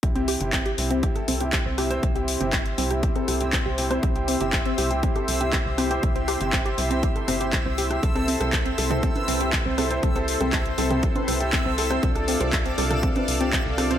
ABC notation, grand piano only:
X:1
M:4/4
L:1/16
Q:1/4=120
K:C
V:1 name="Grand piano"
[C,CEG] [C,CEG]2 [C,CEG] [C,E] z [C,CEG] [C,CEG] [C,CEG] [C,CEA]2 [C,CEG] [C,CG] z [C,CEG] [C,CEc] | [C,EG] [C,CEG]2 [C,CEG] [C,CEG] z [C,CEG] [C,CEG] [C,CEG] [C,CEA]2 [C,CEG] [CE] z [C,CEG] [C,CEc] | [C,CEG] [C,CEG]2 [C,CEG] [C,CE] z [C,CEG] [C,CEG] [C,CEG] [C,CEA]2 [C,CEG] z2 [C,CEG] [C,CEc] | [C,CEG] [C,CEG]2 [C,CEG] [C,CEG] z [C,CEG] [C,CEG] [C,CEG] [C,CEA] [C,CEG] [C,CEG] z2 [C,CEG] [C,CEG] |
[C,CEA] [C,CEA]2 [C,CEA] [C,CEA] z [C,CEA] [C,CEA] [C,CEA] [C,CEB]2 [C,CEG] C, z [C,CEA] [C,CEc] | [C,CEA] [C,CEA]2 [C,CEA] [C,CEA] z [C,CEA] [C,CEA] [C,CEA] [C,CEB]2 [C,CEG] C, z [CEA] [CEc] | [C,DFA] [C,DFA]2 [C,DFA] [C,DFA] z [C,DFA] [C,DFA] [C,DFA] [C,DFB]2 [C,DFG] C, z [C,DFA] [C,DFc] |]